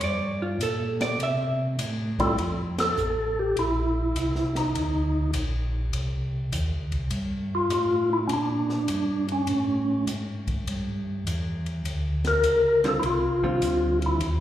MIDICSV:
0, 0, Header, 1, 5, 480
1, 0, Start_track
1, 0, Key_signature, -1, "major"
1, 0, Tempo, 591133
1, 13, Time_signature, 4, 2, 24, 8
1, 11694, End_track
2, 0, Start_track
2, 0, Title_t, "Hollow-body jazz guitar"
2, 0, Program_c, 0, 26
2, 29, Note_on_c, 0, 74, 93
2, 336, Note_off_c, 0, 74, 0
2, 343, Note_on_c, 0, 65, 49
2, 490, Note_off_c, 0, 65, 0
2, 509, Note_on_c, 0, 69, 71
2, 816, Note_off_c, 0, 69, 0
2, 826, Note_on_c, 0, 74, 97
2, 972, Note_off_c, 0, 74, 0
2, 999, Note_on_c, 0, 76, 98
2, 1186, Note_off_c, 0, 76, 0
2, 10430, Note_on_c, 0, 50, 58
2, 10434, Note_on_c, 0, 55, 60
2, 10438, Note_on_c, 0, 60, 67
2, 10439, Note_on_c, 0, 65, 66
2, 10567, Note_off_c, 0, 50, 0
2, 10569, Note_off_c, 0, 55, 0
2, 10571, Note_off_c, 0, 60, 0
2, 10571, Note_off_c, 0, 65, 0
2, 10909, Note_on_c, 0, 55, 56
2, 10911, Note_on_c, 0, 50, 49
2, 10915, Note_on_c, 0, 60, 64
2, 10915, Note_on_c, 0, 65, 67
2, 11509, Note_off_c, 0, 55, 0
2, 11510, Note_off_c, 0, 50, 0
2, 11512, Note_off_c, 0, 60, 0
2, 11512, Note_off_c, 0, 65, 0
2, 11694, End_track
3, 0, Start_track
3, 0, Title_t, "Tonewheel organ"
3, 0, Program_c, 1, 16
3, 1784, Note_on_c, 1, 55, 82
3, 1786, Note_on_c, 1, 64, 79
3, 1788, Note_on_c, 1, 60, 75
3, 1788, Note_on_c, 1, 65, 78
3, 1796, Note_on_c, 1, 69, 91
3, 1920, Note_off_c, 1, 55, 0
3, 1921, Note_off_c, 1, 64, 0
3, 1922, Note_off_c, 1, 60, 0
3, 1922, Note_off_c, 1, 65, 0
3, 1926, Note_off_c, 1, 69, 0
3, 2275, Note_on_c, 1, 69, 101
3, 2756, Note_on_c, 1, 67, 89
3, 2761, Note_off_c, 1, 69, 0
3, 2892, Note_off_c, 1, 67, 0
3, 2915, Note_on_c, 1, 64, 87
3, 3679, Note_off_c, 1, 64, 0
3, 3714, Note_on_c, 1, 63, 63
3, 4311, Note_off_c, 1, 63, 0
3, 6130, Note_on_c, 1, 65, 87
3, 6274, Note_off_c, 1, 65, 0
3, 6284, Note_on_c, 1, 65, 98
3, 6576, Note_off_c, 1, 65, 0
3, 6602, Note_on_c, 1, 64, 89
3, 6652, Note_off_c, 1, 64, 0
3, 6720, Note_on_c, 1, 61, 64
3, 6749, Note_off_c, 1, 61, 0
3, 6767, Note_on_c, 1, 62, 85
3, 7528, Note_off_c, 1, 62, 0
3, 7569, Note_on_c, 1, 61, 68
3, 8161, Note_off_c, 1, 61, 0
3, 9967, Note_on_c, 1, 70, 98
3, 10404, Note_off_c, 1, 70, 0
3, 10458, Note_on_c, 1, 69, 96
3, 10504, Note_off_c, 1, 69, 0
3, 10553, Note_on_c, 1, 64, 59
3, 10585, Note_off_c, 1, 64, 0
3, 10603, Note_on_c, 1, 65, 91
3, 11362, Note_off_c, 1, 65, 0
3, 11418, Note_on_c, 1, 64, 64
3, 11545, Note_off_c, 1, 64, 0
3, 11694, End_track
4, 0, Start_track
4, 0, Title_t, "Tonewheel organ"
4, 0, Program_c, 2, 16
4, 2, Note_on_c, 2, 43, 91
4, 472, Note_off_c, 2, 43, 0
4, 484, Note_on_c, 2, 46, 91
4, 953, Note_off_c, 2, 46, 0
4, 967, Note_on_c, 2, 48, 89
4, 1435, Note_off_c, 2, 48, 0
4, 1451, Note_on_c, 2, 45, 98
4, 1917, Note_off_c, 2, 45, 0
4, 1933, Note_on_c, 2, 41, 77
4, 2399, Note_off_c, 2, 41, 0
4, 2403, Note_on_c, 2, 33, 70
4, 2874, Note_off_c, 2, 33, 0
4, 2886, Note_on_c, 2, 34, 80
4, 3356, Note_off_c, 2, 34, 0
4, 3367, Note_on_c, 2, 36, 87
4, 3837, Note_off_c, 2, 36, 0
4, 3853, Note_on_c, 2, 38, 78
4, 4321, Note_off_c, 2, 38, 0
4, 4323, Note_on_c, 2, 34, 72
4, 4797, Note_off_c, 2, 34, 0
4, 4806, Note_on_c, 2, 36, 86
4, 5278, Note_off_c, 2, 36, 0
4, 5294, Note_on_c, 2, 39, 96
4, 5451, Note_on_c, 2, 38, 52
4, 5452, Note_off_c, 2, 39, 0
4, 5615, Note_off_c, 2, 38, 0
4, 5619, Note_on_c, 2, 36, 63
4, 5769, Note_off_c, 2, 36, 0
4, 5769, Note_on_c, 2, 43, 83
4, 6241, Note_off_c, 2, 43, 0
4, 6252, Note_on_c, 2, 45, 71
4, 6723, Note_off_c, 2, 45, 0
4, 6739, Note_on_c, 2, 46, 91
4, 7207, Note_off_c, 2, 46, 0
4, 7220, Note_on_c, 2, 43, 80
4, 7687, Note_off_c, 2, 43, 0
4, 7703, Note_on_c, 2, 45, 77
4, 8169, Note_off_c, 2, 45, 0
4, 8173, Note_on_c, 2, 44, 75
4, 8643, Note_off_c, 2, 44, 0
4, 8658, Note_on_c, 2, 43, 74
4, 9126, Note_off_c, 2, 43, 0
4, 9134, Note_on_c, 2, 40, 84
4, 9603, Note_off_c, 2, 40, 0
4, 9615, Note_on_c, 2, 38, 73
4, 10084, Note_off_c, 2, 38, 0
4, 10092, Note_on_c, 2, 37, 68
4, 10561, Note_off_c, 2, 37, 0
4, 10573, Note_on_c, 2, 36, 79
4, 11041, Note_off_c, 2, 36, 0
4, 11054, Note_on_c, 2, 38, 84
4, 11521, Note_off_c, 2, 38, 0
4, 11529, Note_on_c, 2, 39, 79
4, 11694, Note_off_c, 2, 39, 0
4, 11694, End_track
5, 0, Start_track
5, 0, Title_t, "Drums"
5, 6, Note_on_c, 9, 51, 74
5, 87, Note_off_c, 9, 51, 0
5, 492, Note_on_c, 9, 44, 52
5, 492, Note_on_c, 9, 51, 71
5, 574, Note_off_c, 9, 44, 0
5, 574, Note_off_c, 9, 51, 0
5, 818, Note_on_c, 9, 38, 59
5, 818, Note_on_c, 9, 51, 52
5, 899, Note_off_c, 9, 38, 0
5, 899, Note_off_c, 9, 51, 0
5, 973, Note_on_c, 9, 51, 58
5, 1055, Note_off_c, 9, 51, 0
5, 1451, Note_on_c, 9, 44, 59
5, 1451, Note_on_c, 9, 51, 79
5, 1533, Note_off_c, 9, 44, 0
5, 1533, Note_off_c, 9, 51, 0
5, 1777, Note_on_c, 9, 36, 67
5, 1783, Note_on_c, 9, 51, 43
5, 1859, Note_off_c, 9, 36, 0
5, 1864, Note_off_c, 9, 51, 0
5, 1935, Note_on_c, 9, 51, 59
5, 2016, Note_off_c, 9, 51, 0
5, 2261, Note_on_c, 9, 38, 67
5, 2261, Note_on_c, 9, 51, 59
5, 2342, Note_off_c, 9, 38, 0
5, 2342, Note_off_c, 9, 51, 0
5, 2413, Note_on_c, 9, 44, 50
5, 2494, Note_off_c, 9, 44, 0
5, 2896, Note_on_c, 9, 51, 53
5, 2977, Note_off_c, 9, 51, 0
5, 3376, Note_on_c, 9, 44, 52
5, 3376, Note_on_c, 9, 51, 59
5, 3458, Note_off_c, 9, 44, 0
5, 3458, Note_off_c, 9, 51, 0
5, 3534, Note_on_c, 9, 38, 28
5, 3616, Note_off_c, 9, 38, 0
5, 3696, Note_on_c, 9, 38, 38
5, 3704, Note_on_c, 9, 51, 44
5, 3777, Note_off_c, 9, 38, 0
5, 3785, Note_off_c, 9, 51, 0
5, 3859, Note_on_c, 9, 51, 57
5, 3941, Note_off_c, 9, 51, 0
5, 4332, Note_on_c, 9, 44, 42
5, 4332, Note_on_c, 9, 51, 69
5, 4413, Note_off_c, 9, 44, 0
5, 4413, Note_off_c, 9, 51, 0
5, 4816, Note_on_c, 9, 51, 63
5, 4897, Note_off_c, 9, 51, 0
5, 5298, Note_on_c, 9, 44, 53
5, 5298, Note_on_c, 9, 51, 60
5, 5379, Note_off_c, 9, 44, 0
5, 5379, Note_off_c, 9, 51, 0
5, 5618, Note_on_c, 9, 51, 39
5, 5699, Note_off_c, 9, 51, 0
5, 5769, Note_on_c, 9, 51, 62
5, 5850, Note_off_c, 9, 51, 0
5, 6255, Note_on_c, 9, 44, 54
5, 6255, Note_on_c, 9, 51, 60
5, 6336, Note_off_c, 9, 44, 0
5, 6336, Note_off_c, 9, 51, 0
5, 6733, Note_on_c, 9, 51, 57
5, 6814, Note_off_c, 9, 51, 0
5, 7058, Note_on_c, 9, 38, 30
5, 7139, Note_off_c, 9, 38, 0
5, 7210, Note_on_c, 9, 44, 50
5, 7210, Note_on_c, 9, 51, 64
5, 7291, Note_off_c, 9, 44, 0
5, 7291, Note_off_c, 9, 51, 0
5, 7539, Note_on_c, 9, 51, 40
5, 7620, Note_off_c, 9, 51, 0
5, 7690, Note_on_c, 9, 51, 58
5, 7771, Note_off_c, 9, 51, 0
5, 8179, Note_on_c, 9, 44, 50
5, 8179, Note_on_c, 9, 51, 57
5, 8260, Note_off_c, 9, 44, 0
5, 8260, Note_off_c, 9, 51, 0
5, 8505, Note_on_c, 9, 51, 41
5, 8506, Note_on_c, 9, 36, 55
5, 8586, Note_off_c, 9, 51, 0
5, 8587, Note_off_c, 9, 36, 0
5, 8667, Note_on_c, 9, 51, 58
5, 8748, Note_off_c, 9, 51, 0
5, 9149, Note_on_c, 9, 44, 50
5, 9149, Note_on_c, 9, 51, 62
5, 9231, Note_off_c, 9, 44, 0
5, 9231, Note_off_c, 9, 51, 0
5, 9470, Note_on_c, 9, 51, 38
5, 9551, Note_off_c, 9, 51, 0
5, 9625, Note_on_c, 9, 51, 59
5, 9706, Note_off_c, 9, 51, 0
5, 9943, Note_on_c, 9, 38, 44
5, 9943, Note_on_c, 9, 51, 36
5, 10024, Note_off_c, 9, 38, 0
5, 10024, Note_off_c, 9, 51, 0
5, 10098, Note_on_c, 9, 44, 52
5, 10098, Note_on_c, 9, 51, 63
5, 10179, Note_off_c, 9, 44, 0
5, 10179, Note_off_c, 9, 51, 0
5, 10426, Note_on_c, 9, 38, 32
5, 10426, Note_on_c, 9, 51, 36
5, 10507, Note_off_c, 9, 38, 0
5, 10507, Note_off_c, 9, 51, 0
5, 10579, Note_on_c, 9, 51, 57
5, 10661, Note_off_c, 9, 51, 0
5, 10904, Note_on_c, 9, 36, 37
5, 10985, Note_off_c, 9, 36, 0
5, 11058, Note_on_c, 9, 44, 59
5, 11058, Note_on_c, 9, 51, 61
5, 11139, Note_off_c, 9, 44, 0
5, 11139, Note_off_c, 9, 51, 0
5, 11384, Note_on_c, 9, 51, 41
5, 11465, Note_off_c, 9, 51, 0
5, 11535, Note_on_c, 9, 51, 54
5, 11616, Note_off_c, 9, 51, 0
5, 11694, End_track
0, 0, End_of_file